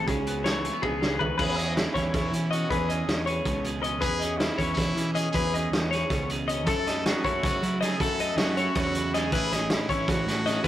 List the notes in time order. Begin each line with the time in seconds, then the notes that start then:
Already playing: G#3
0.07 C#2 C#3 G#4, kick, closed hi-hat
0.27 B3, closed hi-hat
0.44 E3 C#5, snare, closed hi-hat
0.65 A3, closed hi-hat
0.73 B3
0.82 C#2 B2 G#4, kick
1.01 C#3, snare
1.19 D#3 B4, floor tom
1.38 E2 E3 B4, kick, crash
1.42 C#4 G#4
1.56 C#4 D#5, closed hi-hat
1.77 C#4 E4, snare, closed hi-hat
1.94 E2 C#4 C#5, kick, snare, closed hi-hat
2.14 E2 B2 E4, kick, closed hi-hat
2.31 E3, closed hi-hat
2.36 C#4
2.51 C#4 F#4 D#5, closed hi-hat
2.70 E2 C#4 G#4 B4, kick, closed hi-hat
2.89 C#4 D#5, closed hi-hat
3.08 E2 C#4, snare, closed hi-hat
3.26 G#4 C#5, closed hi-hat
3.45 C#2 B2, kick, closed hi-hat
3.64 G#4, closed hi-hat
3.83 C#4 D#5, closed hi-hat
4.01 E2 C#4 G#4 B4, kick, closed hi-hat
4.20 C#4 D#5, closed hi-hat
4.38 E4, snare, closed hi-hat
4.42 C#4
4.58 E2 C#4 C#5, kick, closed hi-hat
4.74 E2 B2 E4, kick
4.78 snare, closed hi-hat
4.95 E3 C#4, closed hi-hat
5.13 C#4 G#4 D#5, closed hi-hat
5.32 E2 C#4 G#4 B4, kick, closed hi-hat
5.54 C#4 D#5, closed hi-hat
5.71 E2 C#4, snare, closed hi-hat
5.91 G#4 C#5, snare, closed hi-hat
6.10 C#2 B2, kick, snare, closed hi-hat
6.30 G#4, closed hi-hat
6.48 C#4 D#5, closed hi-hat
6.66 F#2 E4 A4, kick, closed hi-hat
6.87 A3 D#5, snare, closed hi-hat
7.06 B3 F#4, snare, closed hi-hat
7.15 C#4
7.24 F#2 E4 C#5, kick, closed hi-hat
7.42 F#2 C#3 F#4, kick, closed hi-hat
7.62 F#3 E4, closed hi-hat
7.81 A3 G#4 D#5, snare, closed hi-hat
7.99 F#2 E4 A4, kick, closed hi-hat
8.19 A3 D#5, closed hi-hat
8.36 F#2 C#4 F#4, snare, closed hi-hat
8.57 E4 C#5, closed hi-hat
8.75 E2 C#3 F#4, kick, snare, closed hi-hat
8.95 E4, closed hi-hat
9.14 A3 G#4 D#5, snare, closed hi-hat
9.32 A1 A2 E3 C#4 G#4 B4, kick, closed hi-hat
9.36 E4
9.52 C#4 D#5, snare, closed hi-hat
9.70 C#4 E4, snare, closed hi-hat
9.89 A1 C#4 C#5, kick, closed hi-hat
10.08 A1 E3 F#4, kick, snare, closed hi-hat
10.26 A2 E4, snare, closed hi-hat
10.46 C#4 D#5, snare, closed hi-hat
10.64 A1 B4, kick, closed hi-hat